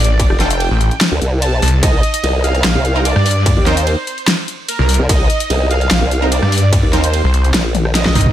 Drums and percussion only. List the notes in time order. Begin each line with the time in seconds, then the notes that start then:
0.04 closed hi-hat
0.20 kick, closed hi-hat, ride
0.30 cross-stick
0.40 snare, closed hi-hat
0.51 closed hi-hat
0.60 closed hi-hat, ride
0.81 closed hi-hat
0.91 closed hi-hat
1.01 snare, closed hi-hat, ride
1.22 closed hi-hat
1.42 closed hi-hat, ride
1.62 open hi-hat
1.68 closed hi-hat
1.83 kick, closed hi-hat, ride
2.03 closed hi-hat
2.14 closed hi-hat
2.24 closed hi-hat, ride
2.44 closed hi-hat
2.55 closed hi-hat
2.64 snare, closed hi-hat, ride
2.85 closed hi-hat
3.05 closed hi-hat, ride
3.16 cross-stick
3.26 open hi-hat
3.31 closed hi-hat
3.46 kick, closed hi-hat, ride
3.66 snare, closed hi-hat
3.77 closed hi-hat
3.87 closed hi-hat, ride
4.07 closed hi-hat
4.18 closed hi-hat
4.28 snare, closed hi-hat, ride
4.48 closed hi-hat
4.69 closed hi-hat, ride
4.89 open hi-hat
4.94 closed hi-hat
5.09 kick, closed hi-hat, ride
5.30 closed hi-hat
5.40 closed hi-hat
5.50 closed hi-hat, ride
5.71 closed hi-hat
5.81 closed hi-hat
5.91 snare, closed hi-hat, ride
6.11 closed hi-hat
6.32 closed hi-hat, ride
6.42 cross-stick
6.52 open hi-hat
6.58 closed hi-hat
6.73 kick, closed hi-hat, ride
6.93 snare, closed hi-hat
7.04 closed hi-hat
7.13 closed hi-hat, ride
7.34 closed hi-hat
7.44 closed hi-hat
7.54 snare, closed hi-hat, ride
7.75 closed hi-hat, high tom
7.85 cross-stick
7.95 snare, closed hi-hat, ride
8.06 kick, snare
8.15 mid tom, open hi-hat
8.21 closed hi-hat
8.26 mid tom